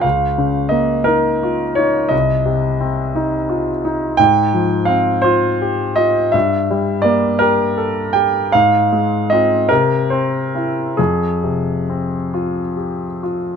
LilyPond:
\new Staff \with { instrumentName = "Grand piano" } { \time 12/8 \key c \phrygian \tempo 4. = 56 << { f''4 ees''8 bes'4 des''8 ees''4. r4. | \key f \minor g''4 f''8 c''4 ees''8 e''4 d''8 bes'4 g''8 | f''4 ees''8 bes'8 c''4 aes'2~ aes'8 r8 | } \\ { des,8 des8 bes8 ees'8 f'8 ees'8 c,8 c8 c'8 ees'8 f'8 ees'8 | aes,8 f8 c'8 f'8 g'8 f'8 g,8 g8 bes8 g'8 a'8 g'8 | aes,8 aes8 <c' f'>8 c8 c'8 <c' e'>8 f,8 c8 c'8 f'8 g'8 f'8 | } >> }